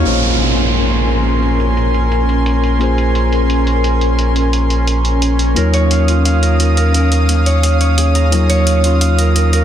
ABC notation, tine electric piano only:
X:1
M:4/4
L:1/8
Q:1/4=174
K:Ebdor
V:1 name="Tine electric piano"
[B,DFAc]8- | [B,DFAc]8 | [B,DFAc]8- | [B,DFAc]8 |
[G,B,EFd]8- | [G,B,EFd]8 | [G,B,EFd]8 |]